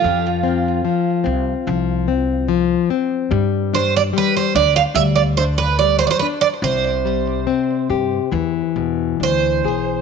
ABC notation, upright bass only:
X:1
M:4/4
L:1/8
Q:1/4=72
K:Gmix
V:1 name="Upright bass" clef=bass
F,,3 C,, C,,4 | G,,3 D,, D,,4 | C,,3 G,, E,, E,, D,, B,,, |]